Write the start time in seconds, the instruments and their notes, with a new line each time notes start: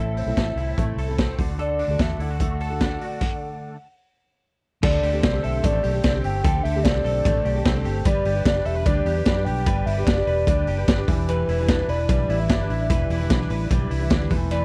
Already playing: fingered electric bass A1, clean electric guitar A2 A3 C4 E4 A4, twelve-string acoustic guitar A3 C4 E4, soft synth lead E5
0.00 twelve-string acoustic guitar A4
0.17 clean electric guitar C4, open hi-hat
0.26 fingered electric bass B1, twelve-string acoustic guitar A2 E3 A3 C4 E4 A4
0.37 fingered electric bass A1, clean electric guitar A4, kick, snare, closed hi-hat
0.56 fingered electric bass C2, twelve-string acoustic guitar A3 C4, clean electric guitar E4, open hi-hat
0.60 twelve-string acoustic guitar E4 A4
0.78 fingered electric bass A1, clean electric guitar A3, twelve-string acoustic guitar A3 C4 E4 A4, kick, closed hi-hat
0.96 fingered electric bass C2, clean electric guitar A4, open hi-hat
1.08 twelve-string acoustic guitar A3 C4 E4 A4
1.18 clean electric guitar C4, kick, snare, closed hi-hat
1.38 fingered electric bass D2, clean electric guitar D3, twelve-string acoustic guitar A3 D4 F#4 A4, kick, open hi-hat
1.59 clean electric guitar D3 A4, twelve-string acoustic guitar A3 D4 F#4 A4, soft synth lead D5, closed hi-hat
1.79 clean electric guitar D4, open hi-hat
1.88 fingered electric bass D2, twelve-string acoustic guitar D3 A3 D4 F#4 A4
1.99 fingered electric bass E2, clean electric guitar A4, soft synth lead E5, kick, snare, closed hi-hat
2.18 fingered electric bass D2, twelve-string acoustic guitar A3 D4 F#4 A4, clean electric guitar E4, soft synth lead F#5, open hi-hat
2.30 clean electric guitar F#4
2.39 twelve-string acoustic guitar A3 D4 F#4 A4, clean electric guitar A3, kick, closed hi-hat
2.60 clean electric guitar A4, open hi-hat
2.70 twelve-string acoustic guitar D4 F#4 A4
2.80 clean electric guitar D4, kick, snare, closed hi-hat
2.99 twelve-string acoustic guitar A3 D4 F#4 A4, clean electric guitar F#4, open hi-hat
3.21 kick, crash
4.82 fingered electric bass D2, clean electric guitar D3 A4, twelve-string acoustic guitar A3 C4 G4 A4, soft synth lead D5, kick, crash
5.03 fingered electric bass D2, clean electric guitar G4, open hi-hat
5.13 twelve-string acoustic guitar D3 A3 C4 G4 A4
5.23 fingered electric bass C2, clean electric guitar C4, soft synth lead D5, kick, snare, hi-hat pedal, ride
5.33 twelve-string acoustic guitar D3 A3 C4 G4 A4
5.43 fingered electric bass B1, clean electric guitar A4, soft synth lead E5, open hi-hat
5.62 fingered electric bass A1, twelve-string acoustic guitar D3 A3 C4 G4 A4, clean electric guitar A3, soft synth lead D5, kick, hi-hat pedal, ride
5.83 fingered electric bass B1, clean electric guitar G4, open hi-hat
5.93 twelve-string acoustic guitar C4 G4 A4
6.03 fingered electric bass C2, clean electric guitar C4, soft synth lead D5, kick, snare, hi-hat pedal, ride
6.14 twelve-string acoustic guitar D3 A3 C4 G4 A4
6.24 fingered electric bass G1, clean electric guitar G4, soft synth lead G5, open hi-hat
6.44 fingered electric bass D2, clean electric guitar D3 A4, twelve-string acoustic guitar A3 C4 G4 A4, kick, hi-hat pedal, ride
6.63 fingered electric bass D2, clean electric guitar G4, soft synth lead E5, open hi-hat
6.76 twelve-string acoustic guitar D3 A3 C4 G4 A4
6.83 fingered electric bass C2, clean electric guitar C4, soft synth lead D5, kick, snare, hi-hat pedal, ride
6.95 twelve-string acoustic guitar D3 A3 C4 G4 A4
7.04 fingered electric bass B1, clean electric guitar A4, open hi-hat
7.25 fingered electric bass A1, twelve-string acoustic guitar D3 A3 C4 G4 A4, clean electric guitar A3, kick, hi-hat pedal, ride
7.45 fingered electric bass B1, clean electric guitar G4, open hi-hat
7.55 twelve-string acoustic guitar C4 G4 A4
7.65 fingered electric bass C2, clean electric guitar C4, kick, snare, hi-hat pedal, ride
7.75 twelve-string acoustic guitar D3 A3 C4 G4 A4
7.85 fingered electric bass G1, clean electric guitar G4, open hi-hat
8.04 fingered electric bass G1, twelve-string acoustic guitar G3 D4 G4 B4, clean electric guitar G3 B4, soft synth lead D5, kick, hi-hat pedal, ride
8.25 fingered electric bass G1, clean electric guitar G4, open hi-hat
8.35 twelve-string acoustic guitar G3 D4 G4 B4
8.45 fingered electric bass F#1, clean electric guitar D4, soft synth lead D5, kick, snare, hi-hat pedal, ride
8.55 twelve-string acoustic guitar G3 D4 G4 B4
8.65 fingered electric bass E1, clean electric guitar A4, soft synth lead E5, open hi-hat
8.75 clean electric guitar B4
8.85 fingered electric bass D2, twelve-string acoustic guitar G3 D4 G4 B4, clean electric guitar D4, soft synth lead D5, kick, hi-hat pedal, ride
9.06 fingered electric bass E2, clean electric guitar G4, open hi-hat
9.16 twelve-string acoustic guitar D4 G4 B4
9.25 fingered electric bass F#2, clean electric guitar D4, soft synth lead D5, kick, snare, hi-hat pedal, ride
9.36 twelve-string acoustic guitar G3 D4 G4 B4
9.45 fingered electric bass B1, clean electric guitar G4, soft synth lead G5, open hi-hat
9.66 fingered electric bass G1, clean electric guitar G3 B4, twelve-string acoustic guitar G3 D4 G4 B4, kick, hi-hat pedal, ride
9.86 fingered electric bass G1, clean electric guitar G4, soft synth lead E5, open hi-hat
9.98 twelve-string acoustic guitar G3 D4 G4 B4
10.05 fingered electric bass F#1, clean electric guitar D4, soft synth lead D5, kick, snare, hi-hat pedal, ride
10.16 twelve-string acoustic guitar G3 D4 G4 B4
10.27 fingered electric bass E1, clean electric guitar B4, open hi-hat
10.47 fingered electric bass D2, twelve-string acoustic guitar G3 D4 G4 B4, clean electric guitar D4, kick, hi-hat pedal, ride
10.67 fingered electric bass F#1, clean electric guitar G4, open hi-hat
10.77 twelve-string acoustic guitar D4 G4 B4
10.88 fingered electric bass G1, clean electric guitar D4, kick, snare, hi-hat pedal, ride
10.97 twelve-string acoustic guitar G3 D4 G4 B4
11.08 fingered electric bass E1, twelve-string acoustic guitar E3 G3 D4 E4 B4, clean electric guitar E3, kick, open hi-hat
11.28 clean electric guitar E3 B4, soft synth lead B4, hi-hat pedal, ride
11.48 fingered electric bass E1, clean electric guitar E4, open hi-hat
11.59 twelve-string acoustic guitar E3 G3 D4 E4 B4
11.68 clean electric guitar D4, kick, snare, hi-hat pedal, ride
11.80 twelve-string acoustic guitar E3 G3 D4 E4 B4
11.88 fingered electric bass E1, clean electric guitar B4, soft synth lead D5, open hi-hat
12.09 fingered electric bass B1, twelve-string acoustic guitar E3 G3 D4 E4 B4, clean electric guitar G3, kick, hi-hat pedal, ride
12.29 fingered electric bass A1, clean electric guitar E4, open hi-hat
12.40 twelve-string acoustic guitar D4 E4 B4, soft synth lead E5
12.49 clean electric guitar D4, kick, snare, hi-hat pedal, ride
12.60 twelve-string acoustic guitar E3 G3 D4 E4 B4
12.69 fingered electric bass A1, clean electric guitar E4, soft synth lead E5, open hi-hat
12.90 fingered electric bass E1, clean electric guitar E3 B4, twelve-string acoustic guitar G3 D4 E4 B4, kick, hi-hat pedal, ride
13.10 fingered electric bass E1, clean electric guitar E4, open hi-hat
13.20 twelve-string acoustic guitar E3 G3 D4 E4 B4
13.30 fingered electric bass B1, clean electric guitar D4, kick, snare, hi-hat pedal, ride
13.39 twelve-string acoustic guitar E3 G3 D4 E4 B4
13.50 fingered electric bass A1, clean electric guitar B4, open hi-hat
13.69 fingered electric bass B1, twelve-string acoustic guitar E3 G3 D4 E4 B4, clean electric guitar G3, kick, hi-hat pedal, ride
13.90 fingered electric bass C2, clean electric guitar E4, open hi-hat
14.00 twelve-string acoustic guitar D4 E4 B4
14.10 fingered electric bass D2, clean electric guitar D4, kick, snare, hi-hat pedal, ride
14.19 twelve-string acoustic guitar E3 G3 D4 E4 B4
14.29 fingered electric bass E1, twelve-string acoustic guitar E3 A3 C4 E4 B4, clean electric guitar E3, kick, open hi-hat
14.51 clean electric guitar E3 B4, soft synth lead D5, hi-hat pedal, ride